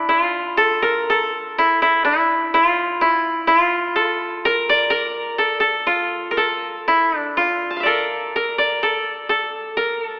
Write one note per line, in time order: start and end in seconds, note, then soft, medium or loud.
0.00 0.60 D3 medium
0.00 1.55 D4 medium
0.00 0.09 E4 medium
0.09 0.21 E4 medium
0.21 1.64 F4 medium
0.57 0.88 A4 medium
0.82 1.16 A#4 medium
1.10 3.00 A4 medium
1.58 1.82 E4 medium
1.82 2.04 E4 medium
2.05 2.54 E4 medium
2.54 2.65 E4 medium
2.65 3.07 F4 medium
3.01 3.47 E4 medium
3.47 3.58 E4 medium
3.58 5.66 F4 medium
3.96 4.51 A4 medium
4.45 4.90 A#4 medium
4.69 6.29 D5 medium
4.90 5.44 A#4 medium
5.38 5.60 A4 medium
5.60 6.37 A4 medium
5.87 6.94 F4 medium
6.31 6.43 A#4 soft
6.37 7.85 A4 medium
6.88 7.18 E4 medium
7.18 7.43 D4 medium
7.37 7.86 F4 medium
7.70 7.92 A5 soft
7.76 9.30 E5 soft
7.76 9.21 F5 soft
7.83 8.42 A4 medium
7.83 8.35 A#4 soft
7.83 8.58 D5 soft
8.36 8.89 A#4 medium
8.58 10.18 D5 medium
8.83 9.29 A4 medium
9.29 9.83 A4 medium
9.77 10.04 A#4 medium
10.04 10.20 A4 medium